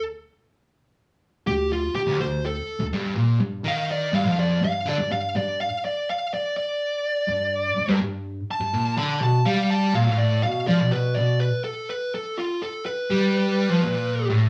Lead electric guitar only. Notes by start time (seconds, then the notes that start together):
1.47 G4
1.72 F4
1.95 G4
2.21 C5
2.46 A4
3.68 F5
3.91 D5
4.15 F5
4.40 D5
4.64 F5
4.89 D5
5.12 F5
5.36 D5
5.61 F5
5.85 D5
6.10 F5
6.34 D5
6.57 D5
8.51 A5
8.98 B5
9.22 A5
9.46 F5
9.70 A5
9.95 F5
10.19 D5
10.43 F5
10.67 D5
10.92 B4
11.15 D5
11.39 B4
11.64 A4
11.90 B4
12.15 A4
12.37 F4
12.62 A4
12.86 B4